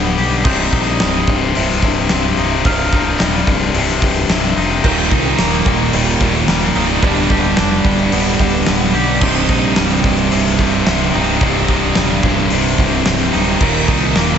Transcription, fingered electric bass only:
0, 0, Header, 1, 2, 480
1, 0, Start_track
1, 0, Key_signature, -3, "minor"
1, 0, Tempo, 547945
1, 396, Time_signature, 4, 2, 24, 8
1, 12600, End_track
2, 0, Start_track
2, 0, Title_t, "Fingered electric bass"
2, 0, Program_c, 0, 33
2, 0, Note_on_c, 0, 26, 104
2, 133, Note_off_c, 0, 26, 0
2, 159, Note_on_c, 0, 35, 95
2, 371, Note_off_c, 0, 35, 0
2, 394, Note_on_c, 0, 24, 95
2, 609, Note_off_c, 0, 24, 0
2, 640, Note_on_c, 0, 34, 91
2, 852, Note_off_c, 0, 34, 0
2, 880, Note_on_c, 0, 24, 105
2, 1093, Note_off_c, 0, 24, 0
2, 1121, Note_on_c, 0, 24, 97
2, 1333, Note_off_c, 0, 24, 0
2, 1363, Note_on_c, 0, 24, 99
2, 1574, Note_off_c, 0, 24, 0
2, 1603, Note_on_c, 0, 24, 95
2, 1814, Note_off_c, 0, 24, 0
2, 1842, Note_on_c, 0, 24, 105
2, 2054, Note_off_c, 0, 24, 0
2, 2080, Note_on_c, 0, 24, 87
2, 2293, Note_off_c, 0, 24, 0
2, 2324, Note_on_c, 0, 24, 105
2, 2536, Note_off_c, 0, 24, 0
2, 2563, Note_on_c, 0, 24, 86
2, 2775, Note_off_c, 0, 24, 0
2, 2806, Note_on_c, 0, 27, 110
2, 3017, Note_off_c, 0, 27, 0
2, 3043, Note_on_c, 0, 24, 92
2, 3255, Note_off_c, 0, 24, 0
2, 3279, Note_on_c, 0, 24, 99
2, 3493, Note_off_c, 0, 24, 0
2, 3524, Note_on_c, 0, 24, 101
2, 3736, Note_off_c, 0, 24, 0
2, 3758, Note_on_c, 0, 24, 103
2, 3972, Note_off_c, 0, 24, 0
2, 3999, Note_on_c, 0, 29, 81
2, 4213, Note_off_c, 0, 29, 0
2, 4245, Note_on_c, 0, 27, 97
2, 4457, Note_off_c, 0, 27, 0
2, 4482, Note_on_c, 0, 36, 88
2, 4695, Note_off_c, 0, 36, 0
2, 4720, Note_on_c, 0, 27, 108
2, 4934, Note_off_c, 0, 27, 0
2, 4960, Note_on_c, 0, 27, 90
2, 5174, Note_off_c, 0, 27, 0
2, 5198, Note_on_c, 0, 27, 99
2, 5413, Note_off_c, 0, 27, 0
2, 5440, Note_on_c, 0, 27, 109
2, 5654, Note_off_c, 0, 27, 0
2, 5677, Note_on_c, 0, 27, 96
2, 5892, Note_off_c, 0, 27, 0
2, 5919, Note_on_c, 0, 24, 95
2, 6133, Note_off_c, 0, 24, 0
2, 6157, Note_on_c, 0, 26, 94
2, 6373, Note_off_c, 0, 26, 0
2, 6398, Note_on_c, 0, 26, 97
2, 6613, Note_off_c, 0, 26, 0
2, 6641, Note_on_c, 0, 29, 110
2, 6855, Note_off_c, 0, 29, 0
2, 6874, Note_on_c, 0, 26, 91
2, 7091, Note_off_c, 0, 26, 0
2, 7121, Note_on_c, 0, 26, 91
2, 7334, Note_off_c, 0, 26, 0
2, 7355, Note_on_c, 0, 26, 100
2, 7571, Note_off_c, 0, 26, 0
2, 7599, Note_on_c, 0, 26, 104
2, 7813, Note_off_c, 0, 26, 0
2, 7836, Note_on_c, 0, 35, 94
2, 8052, Note_off_c, 0, 35, 0
2, 8075, Note_on_c, 0, 24, 111
2, 8291, Note_off_c, 0, 24, 0
2, 8316, Note_on_c, 0, 34, 100
2, 8531, Note_off_c, 0, 34, 0
2, 8561, Note_on_c, 0, 24, 108
2, 8774, Note_off_c, 0, 24, 0
2, 8800, Note_on_c, 0, 24, 85
2, 9014, Note_off_c, 0, 24, 0
2, 9040, Note_on_c, 0, 24, 103
2, 9254, Note_off_c, 0, 24, 0
2, 9279, Note_on_c, 0, 24, 98
2, 9493, Note_off_c, 0, 24, 0
2, 9517, Note_on_c, 0, 24, 100
2, 9732, Note_off_c, 0, 24, 0
2, 9762, Note_on_c, 0, 24, 94
2, 9974, Note_off_c, 0, 24, 0
2, 9998, Note_on_c, 0, 24, 106
2, 10212, Note_off_c, 0, 24, 0
2, 10238, Note_on_c, 0, 24, 87
2, 10452, Note_off_c, 0, 24, 0
2, 10480, Note_on_c, 0, 27, 100
2, 10693, Note_off_c, 0, 27, 0
2, 10721, Note_on_c, 0, 24, 95
2, 10934, Note_off_c, 0, 24, 0
2, 10966, Note_on_c, 0, 24, 97
2, 11176, Note_off_c, 0, 24, 0
2, 11198, Note_on_c, 0, 24, 98
2, 11412, Note_off_c, 0, 24, 0
2, 11446, Note_on_c, 0, 24, 105
2, 11656, Note_off_c, 0, 24, 0
2, 11686, Note_on_c, 0, 26, 86
2, 11896, Note_off_c, 0, 26, 0
2, 11922, Note_on_c, 0, 27, 98
2, 12133, Note_off_c, 0, 27, 0
2, 12165, Note_on_c, 0, 36, 90
2, 12375, Note_off_c, 0, 36, 0
2, 12407, Note_on_c, 0, 27, 108
2, 12600, Note_off_c, 0, 27, 0
2, 12600, End_track
0, 0, End_of_file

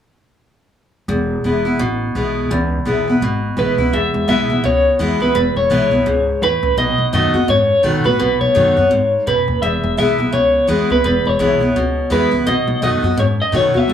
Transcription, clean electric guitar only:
0, 0, Header, 1, 2, 480
1, 0, Start_track
1, 0, Key_signature, 4, "major"
1, 0, Tempo, 355661
1, 1462, Time_signature, 4, 2, 24, 8
1, 18805, End_track
2, 0, Start_track
2, 0, Title_t, "Clean electric guitar"
2, 0, Program_c, 0, 27
2, 4841, Note_on_c, 0, 71, 106
2, 5312, Note_on_c, 0, 76, 116
2, 5328, Note_off_c, 0, 71, 0
2, 5773, Note_off_c, 0, 76, 0
2, 5789, Note_on_c, 0, 76, 107
2, 6234, Note_off_c, 0, 76, 0
2, 6282, Note_on_c, 0, 73, 107
2, 6721, Note_off_c, 0, 73, 0
2, 7042, Note_on_c, 0, 71, 85
2, 7206, Note_off_c, 0, 71, 0
2, 7222, Note_on_c, 0, 71, 97
2, 7509, Note_off_c, 0, 71, 0
2, 7514, Note_on_c, 0, 73, 96
2, 8678, Note_off_c, 0, 73, 0
2, 8683, Note_on_c, 0, 71, 102
2, 9148, Note_off_c, 0, 71, 0
2, 9154, Note_on_c, 0, 75, 109
2, 9617, Note_off_c, 0, 75, 0
2, 9633, Note_on_c, 0, 75, 103
2, 10115, Note_off_c, 0, 75, 0
2, 10121, Note_on_c, 0, 73, 109
2, 10560, Note_off_c, 0, 73, 0
2, 10872, Note_on_c, 0, 71, 80
2, 11041, Note_off_c, 0, 71, 0
2, 11057, Note_on_c, 0, 71, 97
2, 11344, Note_off_c, 0, 71, 0
2, 11349, Note_on_c, 0, 73, 88
2, 12451, Note_off_c, 0, 73, 0
2, 12521, Note_on_c, 0, 71, 96
2, 12980, Note_off_c, 0, 71, 0
2, 12985, Note_on_c, 0, 76, 99
2, 13432, Note_off_c, 0, 76, 0
2, 13475, Note_on_c, 0, 76, 96
2, 13938, Note_off_c, 0, 76, 0
2, 13944, Note_on_c, 0, 73, 102
2, 14391, Note_off_c, 0, 73, 0
2, 14734, Note_on_c, 0, 71, 83
2, 14905, Note_off_c, 0, 71, 0
2, 14921, Note_on_c, 0, 71, 93
2, 15208, Note_off_c, 0, 71, 0
2, 15208, Note_on_c, 0, 73, 96
2, 16355, Note_off_c, 0, 73, 0
2, 16360, Note_on_c, 0, 71, 91
2, 16797, Note_off_c, 0, 71, 0
2, 16827, Note_on_c, 0, 75, 97
2, 17269, Note_off_c, 0, 75, 0
2, 17323, Note_on_c, 0, 75, 94
2, 17803, Note_off_c, 0, 75, 0
2, 17812, Note_on_c, 0, 73, 105
2, 17884, Note_off_c, 0, 73, 0
2, 18106, Note_on_c, 0, 75, 96
2, 18266, Note_off_c, 0, 75, 0
2, 18305, Note_on_c, 0, 73, 87
2, 18589, Note_off_c, 0, 73, 0
2, 18589, Note_on_c, 0, 76, 87
2, 18805, Note_off_c, 0, 76, 0
2, 18805, End_track
0, 0, End_of_file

